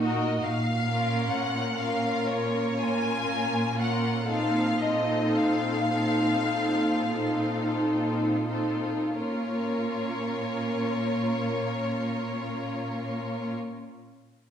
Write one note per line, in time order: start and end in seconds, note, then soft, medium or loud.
0.00 0.33 A#2 soft
0.00 0.42 A#3 soft
0.00 0.42 D#4 soft
0.00 0.42 F#4 soft
0.00 0.42 A#4 soft
0.00 0.41 D#5 soft
0.43 1.20 A#2 soft
0.43 1.30 F5 medium
0.85 1.73 A#3 soft
0.85 1.73 C#4 soft
0.85 1.74 F4 soft
0.85 1.74 A#4 soft
1.30 2.13 A#2 soft
1.30 1.76 F#5 medium
1.74 2.74 A#3 soft
1.74 2.74 C#4 soft
1.74 2.75 F4 soft
1.74 2.75 A#4 soft
1.79 2.27 F5 medium
2.26 3.15 A#2 soft
2.26 2.78 C#5 medium
2.76 3.73 A#3 soft
2.76 3.73 C#4 soft
2.76 3.74 F4 soft
2.76 3.74 A#4 soft
2.76 3.77 G#5 medium
3.26 4.15 A#2 soft
3.74 4.25 A#3 soft
3.74 4.25 C#4 soft
3.74 4.24 F4 soft
3.74 4.25 A#4 soft
3.81 4.29 F#5 soft
4.25 5.22 A#2 soft
4.25 4.78 C4 soft
4.25 4.78 D#4 soft
4.25 4.78 F4 soft
4.25 4.78 A4 soft
4.31 4.81 F5 medium
4.79 5.88 C4 soft
4.79 5.89 D#4 soft
4.79 5.89 F4 soft
4.79 5.89 A4 soft
4.79 5.36 D#5 medium
5.35 6.35 A#2 soft
5.35 7.78 F5 medium
5.91 7.09 C4 soft
5.91 7.09 D#4 soft
5.91 7.09 F4 soft
5.91 7.09 A4 soft
6.50 7.62 A#2 soft
7.10 8.44 C4 soft
7.10 8.44 D#4 soft
7.10 8.44 F4 soft
7.10 8.44 A4 soft
7.78 9.01 A#2 soft
8.47 9.15 C4 soft
8.47 9.15 D#4 soft
8.47 9.16 F4 soft
8.47 9.16 A4 soft
9.15 13.53 A#2 soft
9.15 13.52 A#3 soft
9.15 13.52 C#4 soft
9.15 13.54 F4 soft
9.15 13.54 A#4 soft
9.15 13.53 C#5 soft